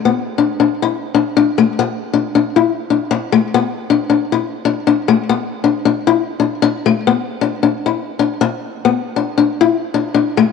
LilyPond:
\new Staff \with { instrumentName = "Steel-string acoustic guitar" } { \time 4/4 \key b \phrygian \tempo 4 = 136 b8 r16 d'8 d'8 e'8 r16 d'8 d'8 a8 | r8. d'8 d'8 e'8 r16 d'8 r8 a8 | b8 r16 d'8 d'8 e'8 r16 d'8 d'8 a8 | b8 r16 d'8 d'8 e'8 r16 d'8 d'8 a8 |
b8 r16 d'8 d'8 e'8 r16 d'8 r4 | b8 r16 d'8 d'8 e'8 r16 d'8 d'8 a8 | }